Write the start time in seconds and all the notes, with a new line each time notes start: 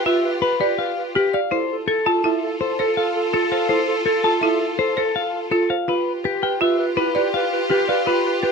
Already playing: F4 G4
0.06 F4 B4 E5
0.25 B4
0.42 B4
0.61 G4 B4 D5
0.79 B4 F5
0.98 B4
1.15 G4 B4
1.34 D5 F5
1.51 E4 F4 A4 C5
1.70 A4
1.88 A4
2.06 F4 A4 A5
2.24 E4 A4 E5
2.43 A4
2.60 A4 C5
2.79 A4 C5
2.97 A4 F5
3.16 A4
3.33 F4 A4
3.52 A4 C5 F5
3.69 E4 A4 C5
3.88 A4
4.06 A4
4.24 F4 A4 A5
4.41 E4 A4 E5
4.60 A4
4.79 A4 C5
4.97 A4 C5
5.16 A4 F5
5.34 A4
5.51 F4 A4
5.70 C5 F5
5.88 F4 G4 B4
6.07 B4
6.24 G4 B4
6.43 G4 B4 G5
6.61 F4 B4 E5
6.79 B4
6.97 E4 B4
7.15 G4 B4 D5
7.34 B4 F5
7.53 B4
7.70 G4 B4
7.88 B4 D5 F5
8.06 F4 B4
8.26 B4
8.43 G4 B4